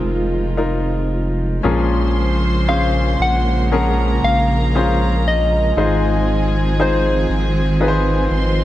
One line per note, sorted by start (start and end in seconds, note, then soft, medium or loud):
0.00 1.60 F1 medium
0.00 1.60 C3 medium
0.00 1.63 D#3 medium
0.00 1.60 F3 medium
0.00 1.60 G#3 medium
0.00 2.17 G#3 medium
0.00 1.66 C4 medium
0.00 0.57 D#4 medium
0.00 0.57 F4 medium
0.00 1.61 F4 medium
0.00 2.17 F4 medium
0.00 0.58 A#4 medium
0.00 0.54 G#5 loud
0.57 1.59 D#4 medium
0.57 1.59 F4 medium
0.57 1.59 A#4 medium
1.63 3.16 A#1 loud
1.63 3.16 A#2 medium
1.63 5.73 C#3 medium
1.63 3.16 F3 medium
1.63 8.64 F3 medium
1.63 5.73 G#3 medium
1.63 5.73 A#3 medium
1.63 2.63 C#4 medium
1.63 2.63 F4 medium
1.63 2.63 G#4 medium
1.63 2.63 A#4 medium
1.63 3.68 C5 medium
1.63 3.67 C6 medium
2.68 3.66 C#4 medium
2.68 3.67 G#4 medium
2.68 3.67 C5 medium
2.68 3.23 F5 loud
3.19 4.19 A#1 loud
3.19 4.26 F#5 loud
3.72 4.69 F3 medium
3.72 4.70 C#4 medium
3.72 4.70 G#4 medium
3.72 5.73 A#4 medium
3.72 4.70 A#4 medium
3.72 5.73 A#5 medium
4.23 5.73 A#1 loud
4.23 5.29 F5 loud
4.75 5.72 C#4 medium
4.75 5.72 F4 medium
4.75 5.72 G#4 medium
4.75 5.73 C5 medium
5.28 6.83 D#5 loud
5.76 7.26 G#1 loud
5.76 7.26 G#2 medium
5.76 8.64 D#3 medium
5.76 7.27 G#3 medium
5.76 8.64 G#3 medium
5.76 8.64 C4 medium
5.76 6.74 D#4 medium
5.76 6.74 F4 medium
5.76 8.28 G#4 medium
5.76 6.74 G#4 medium
5.76 6.74 C5 medium
5.76 8.28 G#5 medium
6.80 7.76 D#4 medium
6.80 7.76 F4 medium
6.80 7.76 G#4 medium
6.80 7.77 C5 medium
6.80 8.64 C5 medium
7.29 8.28 G#1 loud
7.80 8.64 D#4 medium
7.80 8.64 F4 medium
7.80 8.64 G#4 medium
7.80 7.88 B4 medium
7.88 8.64 C5 medium
8.31 8.64 G#1 loud
8.31 8.64 C5 medium
8.31 8.64 C6 loud